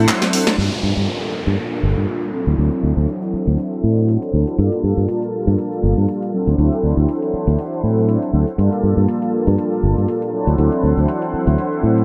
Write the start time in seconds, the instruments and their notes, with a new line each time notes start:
Already playing: analog polysynth F#3 C4 D4 E4 A4, string machine E4 C5 F#5
0.08 snare, clap, closed hi-hat
0.22 snare, closed hi-hat
0.33 analog polysynth F#3 C4 D4 E4 A4, open hi-hat
0.47 snare, closed hi-hat
0.57 fingered electric bass G2, analog polysynth G3 A#3 D4 F4 A4, string machine A#3 F4 A5, closed hi-hat, downlifter
0.83 fingered electric bass G2
0.97 fingered electric bass G2
1.47 fingered electric bass G2
1.58 closed hi-hat
1.83 fingered electric bass G1
1.97 fingered electric bass G2
2.08 closed hi-hat
2.22 closed hi-hat, cabasa
2.33 analog polysynth F#3 C4 D4 E4 A4, string machine E4 C5 F#5
2.47 fingered electric bass D2, closed hi-hat, cabasa
2.57 fingered electric bass D2, analog polysynth F#3 C4 D4 E4 A4, closed hi-hat, cabasa
2.72 closed hi-hat, cabasa
2.83 fingered electric bass D2
2.97 fingered electric bass D2, cabasa
3.08 closed hi-hat, cabasa
3.22 closed hi-hat, cabasa
3.33 muted fingered electric bass stroke
3.47 fingered electric bass D2, closed hi-hat, cabasa
3.58 closed hi-hat, cabasa
3.73 cabasa
3.84 fingered electric bass A2
3.98 cabasa
4.08 closed hi-hat, cabasa
4.22 closed hi-hat, cabasa
4.33 fingered electric bass D2, analog polysynth F#3 C4 D4 E4 A4
4.47 closed hi-hat, cabasa
4.58 fingered electric bass G2, analog polysynth G3 A#3 D4 F4 A4, string machine A#3 F4 A5, closed hi-hat, cabasa
4.72 closed hi-hat, cabasa
4.83 fingered electric bass G2
4.97 fingered electric bass G2, cabasa
5.08 closed hi-hat, cabasa
5.22 closed hi-hat, cabasa
5.47 fingered electric bass G2, closed hi-hat, cabasa
5.58 closed hi-hat, cabasa
5.73 cabasa
5.83 fingered electric bass G1
5.97 fingered electric bass G2, cabasa
6.08 closed hi-hat, cabasa
6.22 closed hi-hat, cabasa
6.33 analog polysynth F#3 C4 D4 E4 A4, string machine E4 C5 F#5
6.47 fingered electric bass D2, closed hi-hat, cabasa
6.58 fingered electric bass D2, analog polysynth F#3 C4 D4 E4 A4, closed hi-hat, cabasa
6.72 closed hi-hat, cabasa
6.83 fingered electric bass D2
6.97 fingered electric bass D2, cabasa
7.09 closed hi-hat, cabasa
7.22 closed hi-hat, cabasa
7.33 muted fingered electric bass stroke
7.47 fingered electric bass D2, closed hi-hat, cabasa
7.59 closed hi-hat, cabasa
7.73 cabasa
7.83 fingered electric bass A2, analog polysynth F#3 C4 D4 E4 A4
7.98 cabasa
8.09 closed hi-hat, cabasa
8.22 closed hi-hat, cabasa
8.33 fingered electric bass D2, analog polysynth F#3 C4 D4 E4 A4
8.47 closed hi-hat, cabasa
8.57 fingered electric bass G2, analog polysynth G3 A#3 D4 F4 A4, string machine A#3 F4 A5, closed hi-hat, cabasa
8.72 closed hi-hat, cabasa
8.83 fingered electric bass G2
8.97 fingered electric bass G2, cabasa
9.08 closed hi-hat, cabasa
9.22 closed hi-hat, cabasa
9.47 fingered electric bass G2, closed hi-hat, cabasa
9.58 closed hi-hat, cabasa
9.73 cabasa
9.83 fingered electric bass G1
9.97 fingered electric bass G2, cabasa
10.08 closed hi-hat, cabasa
10.22 closed hi-hat, cabasa
10.33 analog polysynth F#3 C4 D4 E4 A4, string machine E4 C5 F#5
10.47 fingered electric bass D2, closed hi-hat, cabasa
10.57 fingered electric bass D2, analog polysynth F#3 C4 D4 E4 A4, closed hi-hat, cabasa
10.72 closed hi-hat, cabasa
10.83 fingered electric bass D2
10.97 fingered electric bass D2, cabasa
11.08 closed hi-hat, cabasa
11.22 closed hi-hat, cabasa
11.33 muted fingered electric bass stroke
11.47 fingered electric bass D2, closed hi-hat, cabasa
11.58 closed hi-hat, cabasa
11.72 cabasa
11.83 fingered electric bass A2
11.98 cabasa